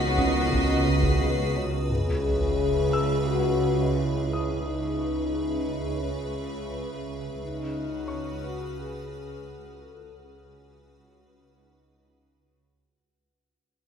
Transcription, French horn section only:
1.90 G#4
3.27 F#4
3.97 E4
4.64 D#4
6.03 C#4
7.43 D#4
8.46 F#4
8.80 G#4
9.83 A4
10.18 G#4
11.20 F#4
11.56 D#4

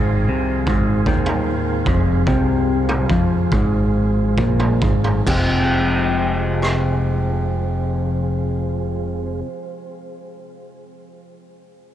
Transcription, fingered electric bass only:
Already playing: G#1
0.28 C2
0.67 G#1
1.06 D#2
1.86 F1
2.27 C2
3.10 F2
3.52 G#1
4.38 A#1
4.82 G#1
5.27 F1

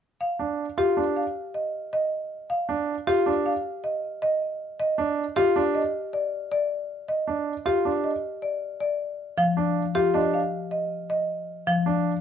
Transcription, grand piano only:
0.39 D4
0.78 F4
0.97 D4
2.69 D4
3.07 F4
3.26 D4
4.98 D4
5.37 F4
5.56 D4
7.27 D4
7.66 F4
7.85 D4
9.57 D4
9.95 F4
10.14 D4
11.86 D4

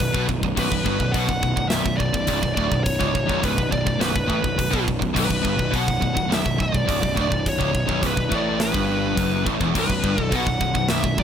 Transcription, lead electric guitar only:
Already playing: B4
0.59 B4
1.12 F#5
1.69 E5
1.97 D5
2.55 D5
2.84 C#5
3.45 B4
3.72 D5
4.02 B4
5.19 B4
5.76 F#5
6.34 E5
6.63 D5
7.21 D5
7.49 C#5
8.07 B4
8.35 D5
8.61 B4
9.79 B4
10.23 A4
10.35 F#5
10.89 E5
11.19 D5

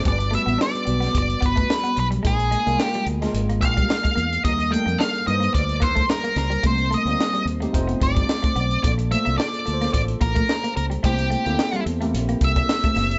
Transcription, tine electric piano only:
0.05 G3 B3 D4 F#4 B4
0.31 G3 B3 D4 F#4 B4
0.86 G3 B3 D4 F#4 D5
2.24 G#3 A#3 D4 F4 A#4
2.66 G#3 A#3 D4 F4 A#4
3.21 G#3 A#3 D4 F4 A#4
4.44 G3 A#3 D4 D#4 A#4
4.72 G3 A#3 D4 D#4 A4
4.79 A#4
5.27 G3 A#3 D4 D#4 B4
5.35 C5
6.64 G3 A#3 C4 D#4 A#4
7.06 G3 A#3 C4 D#4 C5
7.61 G3 A#3 C4 D#4 G4
7.73 A3 C4 D#4 F4 C5
8.83 A#3 D4 F4 A4 D5
9.11 A#3 D4 F4 A4 C5
9.65 A#3 D4 F4 A4 A#4
9.74 C5
11.04 A#3 C4 E4 G4 C5
11.46 A#3 C4 E4 G4 A4
12.01 A#3 C4 E4 G4 A#4

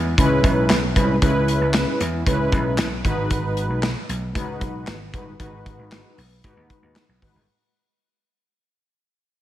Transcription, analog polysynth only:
0.18 G#3 C#4 E4 B4
0.96 G#3 C#4 E4 B4
1.22 G#3 C#4 E4 B4
2.26 G#3 C#4 E4 B4
3.04 G#3 D#4 F#4 B4
4.34 G#3 D#4 F#4 B4
5.13 G#3 D#4 F#4 B4
5.39 G#3 D#4 F#4 B4
6.43 G#3 D#4 F#4 B4
7.22 G#3 D#4 F#4 B4

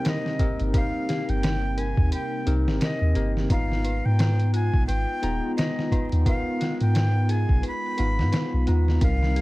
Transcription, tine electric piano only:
Already playing: C4 D#4 G4 A#4
0.40 C4 D#4 G4 A#4
0.73 C4 D#4 G4 A#4
2.46 C4 D#4 G4 A#4
3.15 C4 D#4 G4 A#4
3.49 B3 D#4 F4 A#5
5.23 B3 D#4 F4 A#5
5.91 B3 D#4 F4 A#5
6.25 B3 D#4 F4 A#4
7.98 B3 D#4 F4 F5
8.67 B3 D#4 F4 A#5
9.01 G3 C4 D#4 A#4

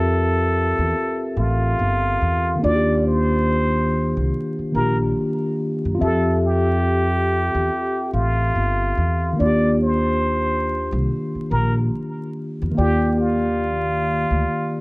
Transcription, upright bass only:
Already playing: F2
0.79 E2
1.37 A1
1.79 G1
2.22 E2
2.64 D#2
4.17 C2
4.59 muted upright bass stroke
4.75 A#1
5.85 F#2
6.02 F2
7.55 E2
8.13 A1
8.55 G1
8.97 E2
9.40 D#2
10.92 C2
11.35 muted upright bass stroke
11.51 A#1
12.62 E2
12.78 D#2
14.31 D2

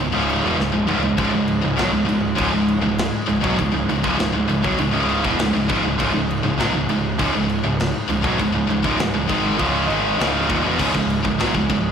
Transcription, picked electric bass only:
0.00 C#1
0.15 C#1
0.44 E1
0.59 C#1
0.73 C#1
0.89 C#1
1.04 C#1
1.19 C#1
1.34 C#1
1.64 C#1
1.78 B1
1.93 C#1
2.08 C#1
2.38 C#1
2.54 C#1
2.84 C#1
3.29 C#1
3.45 B1
3.59 C#1
3.73 C#1
3.89 C#1
4.04 C#1
4.18 C#1
4.33 C#1
4.48 C#1
4.65 B1
4.78 C#1
4.93 C#1
5.25 E1
5.38 C#1
5.55 C#1
5.70 C#1
5.84 C#1
6.00 C#1
6.14 C#1
6.44 C#1
6.58 B1
6.73 C#1
6.88 C#1
7.19 C#1
7.35 C#1
7.65 C#1
8.09 C#1
8.25 B1
8.40 C#1
8.55 C#1
8.70 C#1
8.85 C#1
9.00 C#1
9.14 C#1
9.29 G#1
9.59 C#1
9.90 G#1
10.19 C#1
10.50 D#1
10.65 E1
10.80 C#1
10.95 C#1
11.25 C#1
11.41 B1
11.55 C#1
11.70 C#1

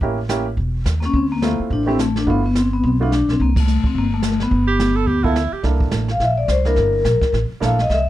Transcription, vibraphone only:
1.00 A#3
1.05 C#4
1.15 C4
1.32 A#3
1.73 D4
1.89 C4
2.00 A3
2.17 D4
2.30 B3
2.46 B3
2.58 C4
2.73 B3
2.84 C4
3.03 D4
3.14 D4
3.31 C4
3.42 A#3
3.60 A3
3.87 C4
3.98 A#3
4.14 A3
4.43 B3
6.11 F5
6.23 E5
6.38 D5
6.51 C5
6.66 A#4
7.64 F5
7.81 D#5
7.92 E5

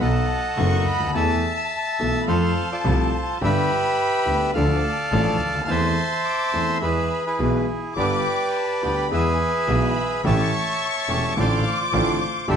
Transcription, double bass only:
0.00 B1
0.57 F#1
0.86 D2
1.14 E2
2.00 B1
2.28 F2
2.85 C2
3.42 G1
4.26 D2
4.55 D2
5.12 A1
5.40 D2
5.69 E2
6.53 E2
6.82 E2
7.39 B1
7.97 G1
8.83 D2
9.11 E2
9.68 B1
10.25 A1
11.09 E1
11.36 A1
11.93 A1
12.49 G1

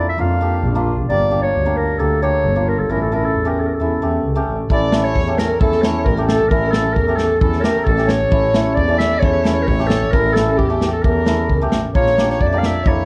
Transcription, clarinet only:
0.09 E5
0.21 F5
1.08 D5
1.42 C#5
1.77 A#4
1.99 A4
2.22 C#5
2.68 A#4
2.79 A4
2.91 A#4
3.01 A4
3.14 A#4
3.25 A4
3.48 A#4
3.60 A4
3.67 A#4
3.74 A4
4.71 D5
5.04 C#5
5.38 A#4
5.59 A4
5.81 C#5
6.04 A#4
6.27 A4
6.49 A#4
6.71 A4
6.94 A#4
7.16 A4
7.40 A4
7.60 A#4 C#5
7.84 A4
8.07 C#5
8.63 C#5
8.75 D5
8.98 E5
9.19 C#5
9.54 C#5
9.62 A#4
9.67 C#5
9.87 A4
10.11 A#4
10.34 A4
10.57 G4
10.93 A4
11.03 A#4
11.95 C#5
12.31 C#5
12.42 D5
12.58 F5
12.66 E5
12.88 C#5

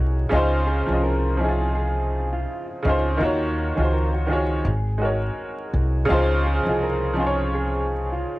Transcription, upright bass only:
Already playing: C2
0.32 C#2
0.88 C2
2.85 C#2
3.20 D#2
3.77 C#2
4.65 G#1
5.74 C2
6.10 C#2
6.67 C2

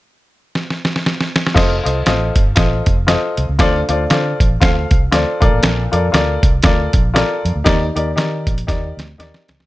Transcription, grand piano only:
1.54 F4 A4 C5 D#5
1.84 F4 A4 C5 D#5
2.06 F4 A4 C5 D#5
2.55 F4 A4 C5 D#5
3.07 F4 A4 C5 D#5
3.59 D3 F4 A4 C5 D5
3.89 F4 A4 C5 D5
4.10 F4 A4 C5 D5
4.61 F4 A4 C5 F5
5.12 F4 A4 C5 D5
5.40 A#2 F4 A4 A#4 D5
5.92 F4 A4 A#4 D5
6.12 F4 A4 A#4 D5
6.63 F4 A4 A#4 D5
7.14 F4 A4 A#4 D5
7.64 D#3 D#4 G4 A#4 D5
7.95 D#4 G4 A#4 D5
8.16 D#4 G4 A#4 D5
8.67 D#4 G4 A#4 D5
9.18 D#4 G4 A#4 D5

